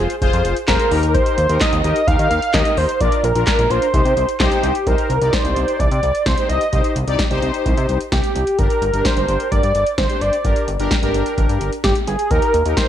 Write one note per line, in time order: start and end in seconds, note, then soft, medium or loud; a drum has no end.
0.00 0.15 F4 medium
0.00 0.15 G#4 medium
0.00 0.15 C5 medium
0.10 closed hi-hat medium
0.22 0.31 F1 loud
0.22 0.56 F4 medium
0.22 0.56 G#4 medium
0.22 0.56 C5 loud
0.22 kick loud
0.22 closed hi-hat medium
0.33 0.42 F2 loud
0.33 closed hi-hat medium
0.45 0.54 F1 medium
0.45 closed hi-hat medium
0.56 closed hi-hat medium
0.68 0.77 F1 loud
0.68 0.91 F4 medium
0.68 0.91 G#4 medium
0.68 1.11 A#4 medium
0.68 0.91 C5 medium
0.68 kick loud
0.68 snare loud
0.68 clap medium
0.68 closed hi-hat medium
0.79 closed hi-hat medium
0.91 1.19 D#2 loud
0.91 1.38 D#4 medium
0.91 1.38 G4 medium
0.91 1.38 A#4 medium
0.91 open hi-hat medium
1.03 closed hi-hat medium
1.14 1.62 C5 loud
1.14 kick loud
1.14 closed hi-hat medium
1.26 closed hi-hat medium
1.38 1.47 D#2 loud
1.38 closed hi-hat medium
1.49 1.59 D#2 loud
1.49 1.75 D#4 medium
1.49 1.75 G4 medium
1.49 1.75 A#4 medium
1.49 closed hi-hat medium
1.61 1.83 D#5 loud
1.61 kick loud
1.61 snare loud
1.61 clap loud
1.61 closed hi-hat medium
1.73 1.82 D#2 loud
1.73 closed hi-hat medium
1.84 1.93 D#2 loud
1.84 2.01 D#4 medium
1.84 2.01 G4 medium
1.84 2.01 A#4 medium
1.84 2.09 D#5 loud
1.84 closed hi-hat medium
1.96 closed hi-hat medium
2.07 2.17 D#2 loud
2.07 2.42 D#4 medium
2.07 2.42 G4 medium
2.07 2.42 A#4 medium
2.07 2.30 F5 loud
2.07 kick loud
2.07 closed hi-hat medium
2.19 2.28 D#3 loud
2.19 closed hi-hat medium
2.31 2.40 D#2 loud
2.31 2.56 F5 loud
2.31 closed hi-hat medium
2.42 closed hi-hat medium
2.54 2.63 D#2 loud
2.54 2.88 D#4 medium
2.54 2.88 G4 medium
2.54 2.88 A#4 medium
2.54 2.79 D#5 loud
2.54 kick loud
2.54 snare loud
2.54 clap medium
2.54 closed hi-hat medium
2.65 closed hi-hat medium
2.77 2.86 D#2 loud
2.77 3.02 C5 loud
2.77 open hi-hat medium
2.89 closed hi-hat medium
3.01 3.10 A#1 loud
3.01 3.26 D4 medium
3.01 3.26 F4 medium
3.01 3.26 A#4 medium
3.01 3.26 D5 loud
3.01 kick loud
3.01 closed hi-hat medium
3.12 closed hi-hat medium
3.24 3.33 A#1 loud
3.24 3.47 A#4 medium
3.24 closed hi-hat medium
3.35 3.45 A#1 loud
3.35 3.61 D4 medium
3.35 3.61 F4 medium
3.35 3.61 A#4 medium
3.35 closed hi-hat medium
3.47 3.73 A#4 medium
3.47 kick loud
3.47 snare loud
3.47 clap loud
3.47 closed hi-hat loud
3.59 3.68 A#1 loud
3.59 closed hi-hat medium
3.70 3.79 A#1 medium
3.70 3.87 D4 medium
3.70 3.87 F4 medium
3.70 3.87 A#4 medium
3.70 4.40 C5 medium
3.70 closed hi-hat medium
3.82 closed hi-hat medium
3.93 4.03 C2 loud
3.93 4.28 D#4 medium
3.93 4.28 G4 medium
3.93 4.28 C5 medium
3.93 kick loud
3.93 closed hi-hat medium
4.05 4.14 C3 loud
4.05 closed hi-hat medium
4.17 4.26 C2 medium
4.17 closed hi-hat medium
4.29 closed hi-hat medium
4.40 4.49 C2 loud
4.40 4.74 D#4 medium
4.40 4.74 G4 medium
4.40 4.89 G4 medium
4.40 4.74 C5 loud
4.40 kick loud
4.40 snare loud
4.40 clap medium
4.40 closed hi-hat medium
4.52 closed hi-hat medium
4.63 4.72 C2 loud
4.63 closed hi-hat medium
4.75 closed hi-hat medium
4.87 4.96 C2 loud
4.87 5.12 D#4 medium
4.87 5.12 G4 medium
4.87 5.35 A#4 loud
4.87 5.12 C5 medium
4.87 kick loud
4.87 closed hi-hat medium
4.98 closed hi-hat soft
5.10 5.19 C2 medium
5.10 closed hi-hat medium
5.21 5.31 C2 loud
5.21 5.90 D#4 medium
5.21 5.90 G4 medium
5.21 5.90 D5 medium
5.21 closed hi-hat medium
5.33 5.81 C5 medium
5.33 kick loud
5.33 snare loud
5.33 closed hi-hat medium
5.45 5.54 C2 medium
5.45 closed hi-hat medium
5.56 5.66 C2 medium
5.56 closed hi-hat medium
5.68 closed hi-hat medium
5.80 5.89 C2 loud
5.80 6.28 D5 loud
5.80 kick loud
5.80 closed hi-hat medium
5.91 6.01 C3 loud
5.91 closed hi-hat medium
6.03 6.12 C2 loud
6.03 closed hi-hat medium
6.15 closed hi-hat medium
6.26 6.35 C2 loud
6.26 6.49 C5 loud
6.26 kick loud
6.26 snare loud
6.26 closed hi-hat medium
6.38 6.63 D#4 medium
6.38 6.63 G4 medium
6.38 6.63 C5 medium
6.38 closed hi-hat medium
6.49 6.58 C2 medium
6.49 6.93 D#5 loud
6.49 closed hi-hat medium
6.61 closed hi-hat medium
6.73 6.82 C2 loud
6.73 6.98 D#4 medium
6.73 6.98 G4 medium
6.73 6.98 C5 medium
6.73 kick loud
6.73 closed hi-hat medium
6.84 closed hi-hat medium
6.96 7.05 C2 medium
6.96 closed hi-hat medium
7.08 7.17 C2 loud
7.08 7.25 D#4 medium
7.08 7.25 G4 medium
7.08 7.25 D5 loud
7.08 closed hi-hat medium
7.19 kick loud
7.19 snare loud
7.19 closed hi-hat medium
7.31 7.40 C2 medium
7.31 7.99 D#4 medium
7.31 7.99 G4 medium
7.31 7.99 C5 loud
7.31 closed hi-hat medium
7.42 7.52 C2 medium
7.42 closed hi-hat medium
7.54 closed hi-hat medium
7.66 7.75 C2 loud
7.66 kick loud
7.66 closed hi-hat medium
7.77 7.87 C3 loud
7.77 closed hi-hat medium
7.89 7.98 C2 medium
7.89 closed hi-hat medium
8.01 closed hi-hat medium
8.12 8.21 C2 loud
8.12 8.60 G4 medium
8.12 kick loud
8.12 snare loud
8.12 closed hi-hat medium
8.24 closed hi-hat medium
8.35 8.45 C2 medium
8.35 closed hi-hat medium
8.47 closed hi-hat medium
8.59 8.68 G1 loud
8.59 8.84 D4 medium
8.59 8.84 G4 medium
8.59 9.07 A#4 loud
8.59 8.84 A#4 medium
8.59 kick loud
8.59 closed hi-hat medium
8.70 closed hi-hat medium
8.82 8.91 G1 loud
8.82 closed hi-hat medium
8.94 9.03 G1 medium
8.94 9.62 D4 medium
8.94 9.62 G4 medium
8.94 9.62 A#4 medium
8.94 closed hi-hat medium
9.05 9.51 C5 loud
9.05 kick loud
9.05 snare loud
9.05 closed hi-hat medium
9.17 9.26 G1 medium
9.17 closed hi-hat medium
9.28 9.38 G1 loud
9.28 closed hi-hat medium
9.40 closed hi-hat medium
9.52 9.61 G1 loud
9.52 9.95 D5 loud
9.52 kick loud
9.52 closed hi-hat medium
9.63 9.73 G2 loud
9.63 closed hi-hat medium
9.75 9.84 G1 loud
9.75 closed hi-hat medium
9.87 closed hi-hat medium
9.98 10.07 G1 loud
9.98 10.23 C5 loud
9.98 kick loud
9.98 snare loud
9.98 closed hi-hat medium
10.10 10.35 D4 medium
10.10 10.35 G4 medium
10.10 10.35 C5 medium
10.10 closed hi-hat medium
10.21 10.31 G1 medium
10.21 10.68 D5 loud
10.21 closed hi-hat medium
10.33 closed hi-hat medium
10.45 10.54 G1 loud
10.45 10.70 D4 medium
10.45 10.70 G4 medium
10.45 10.70 A#4 medium
10.45 kick loud
10.45 closed hi-hat medium
10.56 closed hi-hat medium
10.68 10.77 G1 medium
10.68 closed hi-hat medium
10.80 10.89 G1 loud
10.80 10.97 D4 medium
10.80 10.97 G4 medium
10.80 10.97 A#4 loud
10.80 closed hi-hat medium
10.91 kick loud
10.91 snare loud
10.91 closed hi-hat medium
11.03 11.12 G1 loud
11.03 11.71 D4 medium
11.03 11.71 G4 medium
11.03 11.71 A#4 loud
11.03 closed hi-hat medium
11.14 11.24 G1 medium
11.14 closed hi-hat medium
11.26 closed hi-hat medium
11.38 11.47 G1 loud
11.38 kick loud
11.38 closed hi-hat medium
11.49 11.58 G2 loud
11.49 closed hi-hat medium
11.61 11.70 G1 loud
11.61 closed hi-hat medium
11.73 closed hi-hat medium
11.84 11.93 G1 loud
11.84 11.95 G4 medium
11.84 kick loud
11.84 snare loud
11.84 closed hi-hat medium
11.95 closed hi-hat medium
12.07 12.17 G1 medium
12.07 12.32 G#4 medium
12.07 closed hi-hat medium
12.19 closed hi-hat medium
12.31 12.40 D#2 loud
12.31 12.56 D#4 medium
12.31 12.56 G4 medium
12.31 12.56 A#4 medium
12.31 12.77 A#4 loud
12.31 kick loud
12.31 closed hi-hat medium
12.42 closed hi-hat medium
12.54 12.63 D#2 loud
12.54 closed hi-hat medium
12.66 12.75 D#2 loud
12.66 12.88 D#4 medium
12.66 12.88 G4 medium
12.66 12.88 A#4 medium
12.66 closed hi-hat medium
12.77 12.88 C5 medium
12.77 kick loud
12.77 snare loud
12.77 closed hi-hat medium